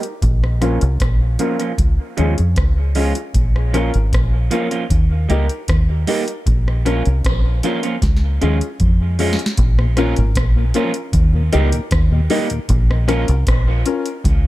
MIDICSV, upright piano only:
0, 0, Header, 1, 2, 480
1, 0, Start_track
1, 0, Tempo, 779221
1, 140, Time_signature, 4, 2, 24, 8
1, 8914, End_track
2, 0, Start_track
2, 0, Title_t, "Upright piano"
2, 0, Program_c, 0, 0
2, 379, Note_on_c, 0, 61, 95
2, 383, Note_on_c, 0, 65, 85
2, 386, Note_on_c, 0, 70, 93
2, 505, Note_off_c, 0, 61, 0
2, 507, Note_off_c, 0, 65, 0
2, 508, Note_off_c, 0, 70, 0
2, 860, Note_on_c, 0, 61, 84
2, 864, Note_on_c, 0, 65, 69
2, 868, Note_on_c, 0, 70, 93
2, 986, Note_off_c, 0, 61, 0
2, 988, Note_off_c, 0, 65, 0
2, 989, Note_off_c, 0, 70, 0
2, 1342, Note_on_c, 0, 61, 93
2, 1346, Note_on_c, 0, 65, 82
2, 1349, Note_on_c, 0, 68, 96
2, 1467, Note_off_c, 0, 61, 0
2, 1469, Note_off_c, 0, 65, 0
2, 1470, Note_off_c, 0, 68, 0
2, 1823, Note_on_c, 0, 61, 77
2, 1826, Note_on_c, 0, 65, 65
2, 1830, Note_on_c, 0, 68, 88
2, 1947, Note_off_c, 0, 61, 0
2, 1949, Note_off_c, 0, 65, 0
2, 1951, Note_off_c, 0, 68, 0
2, 2303, Note_on_c, 0, 61, 92
2, 2308, Note_on_c, 0, 65, 95
2, 2311, Note_on_c, 0, 70, 106
2, 2428, Note_off_c, 0, 61, 0
2, 2430, Note_off_c, 0, 65, 0
2, 2432, Note_off_c, 0, 70, 0
2, 2785, Note_on_c, 0, 61, 80
2, 2788, Note_on_c, 0, 65, 83
2, 2791, Note_on_c, 0, 70, 88
2, 2909, Note_off_c, 0, 61, 0
2, 2910, Note_off_c, 0, 65, 0
2, 2911, Note_off_c, 0, 70, 0
2, 3266, Note_on_c, 0, 63, 87
2, 3269, Note_on_c, 0, 67, 87
2, 3273, Note_on_c, 0, 70, 101
2, 3389, Note_off_c, 0, 63, 0
2, 3391, Note_off_c, 0, 67, 0
2, 3393, Note_off_c, 0, 70, 0
2, 3742, Note_on_c, 0, 63, 74
2, 3745, Note_on_c, 0, 67, 69
2, 3749, Note_on_c, 0, 70, 83
2, 3867, Note_off_c, 0, 63, 0
2, 3869, Note_off_c, 0, 67, 0
2, 3871, Note_off_c, 0, 70, 0
2, 4223, Note_on_c, 0, 61, 99
2, 4226, Note_on_c, 0, 65, 84
2, 4230, Note_on_c, 0, 70, 102
2, 4348, Note_off_c, 0, 61, 0
2, 4349, Note_off_c, 0, 65, 0
2, 4351, Note_off_c, 0, 70, 0
2, 4703, Note_on_c, 0, 61, 82
2, 4706, Note_on_c, 0, 65, 76
2, 4710, Note_on_c, 0, 70, 90
2, 4828, Note_off_c, 0, 61, 0
2, 4829, Note_off_c, 0, 65, 0
2, 4831, Note_off_c, 0, 70, 0
2, 5183, Note_on_c, 0, 61, 94
2, 5185, Note_on_c, 0, 65, 77
2, 5191, Note_on_c, 0, 68, 103
2, 5307, Note_off_c, 0, 61, 0
2, 5309, Note_off_c, 0, 65, 0
2, 5312, Note_off_c, 0, 68, 0
2, 5660, Note_on_c, 0, 61, 81
2, 5663, Note_on_c, 0, 65, 67
2, 5668, Note_on_c, 0, 68, 84
2, 5786, Note_off_c, 0, 61, 0
2, 5788, Note_off_c, 0, 65, 0
2, 5790, Note_off_c, 0, 68, 0
2, 6143, Note_on_c, 0, 61, 100
2, 6146, Note_on_c, 0, 65, 94
2, 6151, Note_on_c, 0, 70, 116
2, 6267, Note_off_c, 0, 61, 0
2, 6269, Note_off_c, 0, 65, 0
2, 6271, Note_off_c, 0, 70, 0
2, 6618, Note_on_c, 0, 61, 80
2, 6624, Note_on_c, 0, 65, 80
2, 6627, Note_on_c, 0, 70, 93
2, 6744, Note_off_c, 0, 61, 0
2, 6747, Note_off_c, 0, 65, 0
2, 6749, Note_off_c, 0, 70, 0
2, 7099, Note_on_c, 0, 63, 96
2, 7103, Note_on_c, 0, 67, 90
2, 7107, Note_on_c, 0, 70, 118
2, 7225, Note_off_c, 0, 63, 0
2, 7227, Note_off_c, 0, 67, 0
2, 7228, Note_off_c, 0, 70, 0
2, 7577, Note_on_c, 0, 63, 80
2, 7580, Note_on_c, 0, 67, 77
2, 7584, Note_on_c, 0, 70, 99
2, 7703, Note_off_c, 0, 63, 0
2, 7704, Note_off_c, 0, 67, 0
2, 7706, Note_off_c, 0, 70, 0
2, 8056, Note_on_c, 0, 61, 109
2, 8059, Note_on_c, 0, 65, 93
2, 8062, Note_on_c, 0, 70, 120
2, 8182, Note_off_c, 0, 61, 0
2, 8184, Note_off_c, 0, 65, 0
2, 8185, Note_off_c, 0, 70, 0
2, 8537, Note_on_c, 0, 61, 95
2, 8540, Note_on_c, 0, 65, 87
2, 8544, Note_on_c, 0, 70, 92
2, 8662, Note_off_c, 0, 61, 0
2, 8663, Note_off_c, 0, 65, 0
2, 8666, Note_off_c, 0, 70, 0
2, 8914, End_track
0, 0, End_of_file